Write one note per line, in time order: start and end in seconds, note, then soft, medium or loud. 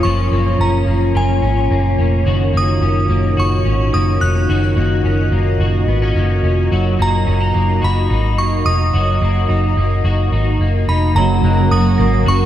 0.00 11.12 A#2 medium
0.00 2.26 F3 medium
0.00 0.31 A#3 medium
0.00 0.60 C#4 medium
0.00 2.22 C#4 medium
0.00 2.23 F4 medium
0.00 4.45 C#5 medium
0.00 0.61 C#6 medium
0.04 0.29 F#1 medium
0.04 1.14 F4 medium
0.31 0.56 F#1 medium
0.31 0.87 A#3 medium
0.59 0.84 F#1 medium
0.59 1.42 C#4 medium
0.59 1.18 A#5 medium
0.87 1.11 F#1 medium
0.87 1.70 A#3 soft
1.15 1.40 F#1 medium
1.15 2.26 F4 medium
1.15 1.95 G#5 medium
1.42 1.67 G#1 medium
1.42 1.98 C#4 medium
1.71 1.95 F#1 medium
1.71 2.53 A#3 medium
1.98 2.23 F1 medium
1.98 2.82 C#4 soft
2.26 2.51 F#1 medium
2.26 4.49 D#3 medium
2.26 11.11 D#4 medium
2.26 11.11 F#4 medium
2.26 3.37 F#4 medium
2.53 2.78 F#1 medium
2.53 3.09 A#3 medium
2.53 3.42 D#6 medium
2.82 3.06 F#1 medium
2.82 3.64 C#4 soft
3.09 3.34 F#1 medium
3.09 3.92 A#3 medium
3.37 3.62 F#1 medium
3.37 4.49 F#4 medium
3.37 3.96 C#6 medium
3.65 3.90 G#1 medium
3.65 4.19 C#4 medium
3.93 4.18 F#1 medium
3.93 4.76 A#3 medium
3.93 4.22 D#6 medium
4.21 4.46 F1 medium
4.21 5.04 C#4 soft
4.21 5.28 F#6 medium
4.48 4.74 F#1 medium
4.48 6.71 D#3 medium
4.48 5.60 F#4 medium
4.48 6.68 D#5 medium
4.76 5.01 F#1 loud
4.76 5.32 A#3 medium
5.04 5.29 F#1 medium
5.04 5.88 C#4 soft
5.32 5.56 F#1 medium
5.32 6.15 A#3 soft
5.60 5.84 F#1 medium
5.60 6.72 F#4 medium
5.87 6.12 G#1 medium
5.87 6.02 B3 medium
6.02 6.43 C#4 soft
6.16 6.40 F#1 medium
6.16 6.99 A#3 medium
6.43 6.68 F1 medium
6.43 6.77 C#4 soft
6.71 6.96 F#1 medium
6.71 8.93 F#3 medium
6.71 7.81 F#4 medium
6.71 11.11 D#5 medium
6.99 7.24 F#1 medium
6.99 7.53 A#3 medium
6.99 7.86 A#5 medium
7.26 7.52 F#1 medium
7.26 7.40 C#4 medium
7.40 8.09 D#4 soft
7.54 7.79 F#1 medium
7.54 8.37 A#3 soft
7.82 8.07 F#1 medium
7.82 8.94 F#4 medium
7.82 8.40 B5 medium
8.10 8.38 G#1 medium
8.10 8.65 D#4 medium
8.38 8.62 F#1 medium
8.38 9.21 A#3 medium
8.38 8.67 C#6 medium
8.65 8.90 F1 medium
8.65 9.48 D#4 soft
8.65 10.56 D#6 medium
8.94 9.18 F#1 medium
8.94 11.16 F#3 medium
8.94 10.04 F#4 medium
9.22 9.46 F#1 medium
9.22 9.77 A#3 medium
9.49 9.73 F#1 medium
9.49 10.31 D#4 soft
9.77 10.01 F#1 loud
9.77 10.60 A#3 soft
10.04 10.29 F#1 medium
10.04 11.72 F#4 medium
10.32 10.57 G#1 medium
10.32 10.87 D#4 medium
10.59 10.84 F#1 medium
10.59 11.44 A#3 medium
10.88 11.12 F1 medium
10.88 11.21 D#4 medium
10.88 11.17 B5 medium
11.13 11.40 F#1 loud
11.13 12.25 F#2 medium
11.13 12.26 C#3 medium
11.13 12.24 F#3 medium
11.13 12.46 F#3 medium
11.13 12.46 C#4 medium
11.13 12.46 F#4 medium
11.13 12.46 A#4 medium
11.13 12.46 F#5 medium
11.13 11.73 A#5 medium
11.18 12.25 A#3 medium
11.18 12.27 C#4 medium
11.18 12.28 F#4 medium
11.43 11.68 F#1 loud
11.43 11.98 A#3 medium
11.43 12.46 F#6 soft
11.71 11.95 F#1 medium
11.71 12.26 F#4 medium
11.71 12.28 D#6 medium
11.98 12.23 G#1 medium
11.98 12.46 A#3 medium
11.98 12.46 A#6 medium
12.25 12.46 F#1 loud
12.25 12.46 F#3 medium
12.25 12.46 A#3 medium
12.25 12.46 C#4 medium
12.25 12.46 F#4 medium
12.25 12.46 C#6 medium
12.29 12.46 F#4 medium